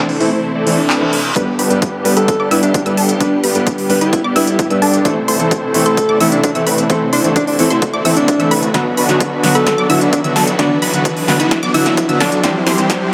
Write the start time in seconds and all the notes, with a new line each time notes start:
Already playing: C3 E3 A3 C4 E4 A4 C5
0.09 D4, open hi-hat
0.20 E3 A3 C4 E4 A4, open hi-hat
0.32 A3 C4 E4 A4 C5
0.44 reverse cymbal
0.55 A3 C4 E4 A4 D5
0.66 E3 A3 C4 E4 A4 D5, open hi-hat
0.78 D4
0.90 A3 C4 E4 A4 B4, clap
1.01 E3 A3 C4 A4
1.13 open hi-hat
1.35 G1 D3 G3 B3 D4 G4 B4 B5, kick, closed hi-hat, riser
1.59 G1 G3 B3 D4 G4 B4 B5, open hi-hat
1.70 G3 B3 D4 B4, closed hi-hat
1.82 kick, closed hi-hat
2.04 G3 B3 D4 B4, open hi-hat
2.17 G1 G3 B3 D4 G4 A4 B4 B5, closed hi-hat
2.28 kick, closed hi-hat
2.40 G1 G3 B3 D4 G4 D5 D6
2.51 G1 G3 B3 D4 E4 G4 B4 E5 E6, open hi-hat
2.63 D4, closed hi-hat
2.74 D4, kick, closed hi-hat
2.85 G1 G3 B3 D4 G4 B4 E5 E6, closed hi-hat
2.97 G1 G3 B3 D4 G4 A4 A5, open hi-hat
3.09 closed hi-hat
3.20 G1 G3 B3 D4 B4 B5, kick, closed hi-hat
3.44 G1 G3 B3 D4 G4 B4 B5, open hi-hat
3.55 G3 B3 D4 B4, closed hi-hat
3.67 kick, closed hi-hat
3.78 open hi-hat
3.89 G3 B3 D4 B4, open hi-hat
4.01 G1 G3 B3 D4 E4 G4 B4 B5, closed hi-hat
4.13 kick, closed hi-hat
4.24 G1 G3 B3 D4 G4 D5 D6
4.35 G1 G3 B3 D4 E4 G4 B4 E5 E6, open hi-hat
4.47 closed hi-hat
4.59 kick, closed hi-hat
4.70 G2 G3 B3 D4 G4 B4 E5 E6, closed hi-hat
4.82 G2 G3 B3 D4 G4 A4 A5, open hi-hat
4.94 closed hi-hat
5.04 A1 C3 E3 A3 C4 E4 A4 C5 C6, kick, closed hi-hat
5.28 A1 A3 C4 E4 A4 C5 C6, open hi-hat
5.39 E3 A3 C4 A4, closed hi-hat
5.51 kick, closed hi-hat
5.74 E3 A3 C4 A4, open hi-hat
5.86 A1 A3 C4 E4 A4 C5 C6, closed hi-hat
5.97 kick, closed hi-hat
6.09 A1 A3 C4 E4 A4 D5 D6
6.20 A1 E3 A3 C4 E4 A4 E5 E6, open hi-hat
6.32 D4, closed hi-hat
6.43 D4, kick, closed hi-hat
6.55 A1 E3 A3 C4 E4 A4 E5 E6, closed hi-hat
6.67 A1 A3 C4 E4 A4 B4 B5, open hi-hat
6.78 closed hi-hat
6.89 A1 E3 A3 C4 E4 F#4 A4 C5 C6, kick, closed hi-hat
7.13 A1 A3 C4 D4 E4 A4 C5 C6, open hi-hat
7.24 E3 A3 C4 D4 A4, closed hi-hat
7.36 D4, kick, closed hi-hat
7.47 D4, open hi-hat
7.58 E3 A3 C4 E4 A4, open hi-hat
7.70 A1 A3 C4 E4 A4 C5 C6, closed hi-hat
7.82 kick, closed hi-hat
7.93 A1 A3 C4 E4 A4 D5 D6
8.05 A1 E3 A3 C4 E4 A4 E5 E6, open hi-hat
8.17 D4, closed hi-hat
8.28 kick, closed hi-hat
8.39 A1 E3 A3 C4 E4 A4 E5 E6, closed hi-hat
8.51 A1 A3 C4 E4 A4 B4 B5, open hi-hat
8.63 closed hi-hat
8.74 B1 D3 F#3 B3 D4 F#4 B4 B5, kick, snare, closed hi-hat
8.97 B1 F#3 B3 D4 F#4 B4 B5, open hi-hat
9.08 D3 F#3 B3 F#4, snare, closed hi-hat
9.20 kick, closed hi-hat
9.43 D3 F#3 B3 F#4, snare, open hi-hat
9.55 B1 F#3 B3 D4 F#4 A4 B4 B5, closed hi-hat
9.67 kick, snare, closed hi-hat
9.78 B1 F#3 B3 D4 F#4 D5 D6
9.89 B1 D3 F#3 B3 D4 E4 F#4 E5 E6, open hi-hat
10.01 D4, closed hi-hat
10.13 D4, kick, closed hi-hat
10.24 B1 D3 F#3 B3 D4 F#4 E5 E6, closed hi-hat
10.36 B1 F#3 B3 D4 F#4 A4 A5, snare, open hi-hat
10.47 closed hi-hat
10.58 B1 D3 F#3 B3 D4 F#4 B4 B5, kick, snare, closed hi-hat
10.82 B1 F#3 B3 D4 F#4 B4 B5, open hi-hat
10.93 D3 F#3 B3 F#4, closed hi-hat
11.05 kick, closed hi-hat
11.17 open hi-hat
11.28 D3 F#3 B3 F#4, snare, open hi-hat
11.40 B1 F#3 B3 D4 E4 F#4 B4 B5, closed hi-hat
11.51 kick, snare, closed hi-hat
11.63 B1 F#3 B3 D4 F#4 D5 D6
11.74 B1 D3 F#3 B3 D4 E4 F#4 E5 E6, open hi-hat
11.86 snare, closed hi-hat
11.97 kick, closed hi-hat
12.08 B1 D3 F#3 B3 D4 F#4 E5 E6, closed hi-hat
12.20 B1 F#3 B3 D4 F#4 A4 A5, snare, open hi-hat
12.32 closed hi-hat
12.43 C2 E3 G3 C4 E4 G4 C5 C6, kick, snare, closed hi-hat
12.67 C2 G3 C4 E4 G4 C5 C6, snare, open hi-hat
12.78 E3 G3 C4 G4, closed hi-hat
12.90 kick, snare, closed hi-hat